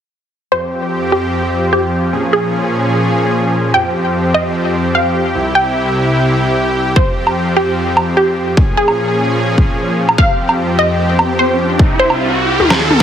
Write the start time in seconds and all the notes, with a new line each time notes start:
0.52 F2 F3 C4 G4 C5
1.12 G4
1.73 G4
2.13 A#2 C#4 G#4
2.33 G#4
3.74 F2 C4 G4 G5
4.34 D#5
4.95 F5
5.35 C2 C3 E4
5.55 G5
6.96 F2 F3 C4 C5, kick
7.27 low woodblock
7.57 G4
7.97 low woodblock
8.17 G4
8.57 A#2 F3 C#4 G#4, kick
8.77 G#4
8.88 low woodblock
9.58 kick
10.09 low woodblock
10.18 F2 C4 G4 F5, kick, riser
10.49 low woodblock
10.79 D#5
11.19 low woodblock
11.39 C5
11.79 C2 C3 E4, kick
11.99 C5
12.10 low woodblock
12.60 D#2 D#3 F4 A#4, high tom
12.70 snare, low woodblock
12.91 mid tom